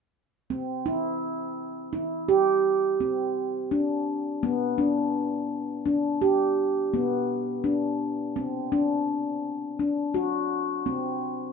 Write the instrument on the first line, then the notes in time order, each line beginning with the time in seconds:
handpan
0.50 C4
0.86 E4
1.93 E4
2.29 G4
3.00 C4
3.71 D4
4.43 B3
4.78 D4
5.86 D4
6.22 G4
6.94 B3
7.64 D4
8.36 C4
8.72 D4
9.79 D4
10.14 F#4
10.86 C4